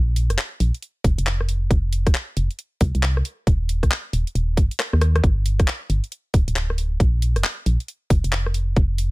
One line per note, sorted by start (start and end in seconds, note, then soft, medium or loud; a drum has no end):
0.00 0.32 A#1 loud
0.16 open hi-hat loud
0.30 0.37 F1 medium
0.30 cross-stick medium
0.30 closed hi-hat medium
0.38 clap loud
0.60 0.72 A#1 medium
0.60 open hi-hat medium
0.74 closed hi-hat soft
0.82 closed hi-hat medium
1.04 1.16 F1 loud
1.04 kick loud
1.04 open hi-hat loud
1.18 1.68 F1 medium
1.18 closed hi-hat medium
1.27 clap loud
1.27 closed hi-hat medium
1.41 cross-stick soft
1.49 open hi-hat medium
1.70 2.08 F1 loud
1.70 kick loud
1.70 closed hi-hat medium
1.93 open hi-hat loud
2.07 2.13 D#1 medium
2.07 kick loud
2.07 cross-stick medium
2.07 closed hi-hat medium
2.15 clap loud
2.37 2.48 F1 medium
2.37 open hi-hat medium
2.51 closed hi-hat soft
2.59 closed hi-hat medium
2.81 2.92 C2 loud
2.81 kick loud
2.81 open hi-hat loud
2.95 3.23 C2 medium
2.95 closed hi-hat medium
3.03 clap loud
3.03 closed hi-hat medium
3.17 cross-stick soft
3.25 open hi-hat medium
3.47 3.84 D#1 loud
3.47 kick loud
3.47 closed hi-hat medium
3.69 open hi-hat loud
3.83 3.90 A#1 medium
3.83 kick medium
3.83 cross-stick medium
3.83 closed hi-hat medium
3.91 clap loud
4.13 4.25 D#1 medium
4.13 open hi-hat medium
4.27 closed hi-hat soft
4.35 4.59 D#1 medium
4.35 closed hi-hat medium
4.57 4.69 G1 medium
4.57 kick loud
4.57 open hi-hat loud
4.71 closed hi-hat medium
4.80 cross-stick medium
4.80 clap loud
4.80 closed hi-hat medium
4.93 5.21 D#2 medium
4.93 cross-stick medium
5.01 cross-stick medium
5.01 open hi-hat loud
5.16 cross-stick medium
5.16 closed hi-hat soft
5.24 5.61 G1 loud
5.24 kick loud
5.24 closed hi-hat medium
5.46 open hi-hat loud
5.60 5.66 F1 medium
5.60 kick loud
5.60 cross-stick medium
5.60 closed hi-hat medium
5.68 clap loud
5.90 6.01 G1 medium
5.90 open hi-hat medium
6.04 closed hi-hat soft
6.12 closed hi-hat medium
6.34 6.45 D1 loud
6.34 kick loud
6.34 open hi-hat loud
6.48 6.98 D1 medium
6.48 closed hi-hat medium
6.56 clap loud
6.56 closed hi-hat medium
6.70 cross-stick medium
6.78 open hi-hat medium
7.00 7.38 A#1 loud
7.00 kick loud
7.00 closed hi-hat medium
7.22 open hi-hat loud
7.36 7.43 F1 medium
7.36 cross-stick medium
7.36 closed hi-hat medium
7.44 clap loud
7.66 7.78 A#1 medium
7.66 open hi-hat medium
7.80 closed hi-hat soft
7.88 closed hi-hat medium
8.10 8.22 F1 loud
8.10 kick loud
8.10 open hi-hat loud
8.24 8.74 F1 medium
8.24 closed hi-hat medium
8.32 clap loud
8.32 closed hi-hat medium
8.46 cross-stick medium
8.54 open hi-hat medium
8.76 9.11 F1 loud
8.76 kick loud
8.76 closed hi-hat medium
8.98 open hi-hat loud